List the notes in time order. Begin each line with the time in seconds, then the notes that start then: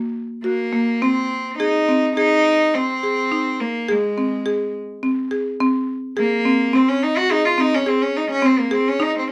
Already playing: A#3
0.44 A#3 F#4
0.73 A#3
1.02 C4
1.59 D#4 G#4
1.89 C4
2.16 D#4 G#4
2.75 C4
3.03 G#4
3.32 D#4
3.60 A#3
3.89 G#3 G#4
4.18 C4
4.46 G#4
5.03 C4
5.31 G#4
5.60 C4
6.17 A#3 G#4
6.45 C4
6.73 C4
6.89 C#4
7.03 D#4
7.17 F#4
7.30 D#4 G#4
7.45 F4
7.58 C4 D#4
7.74 C#4
7.86 C4 G#4
8.02 C#4
8.16 D#4
8.31 C#4
8.42 C4
8.59 A#3
8.71 C4 G#4
8.88 C#4
9.00 D#4
9.18 C4